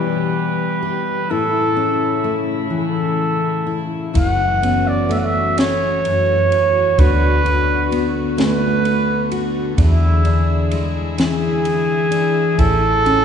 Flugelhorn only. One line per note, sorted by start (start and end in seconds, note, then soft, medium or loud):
0.00 1.32 B4 medium
1.30 2.45 A4 loud
2.73 3.76 A4 medium
4.17 4.89 F#5 loud
4.88 5.13 D5 medium
5.11 5.20 E5 medium
5.18 5.25 F#5 medium
5.24 5.60 E5 medium
5.58 7.00 C#5 loud
6.99 8.12 B4 loud
8.38 9.39 B4 loud
9.79 10.68 E4 medium
11.18 12.60 G#4 loud
12.58 13.25 A4 loud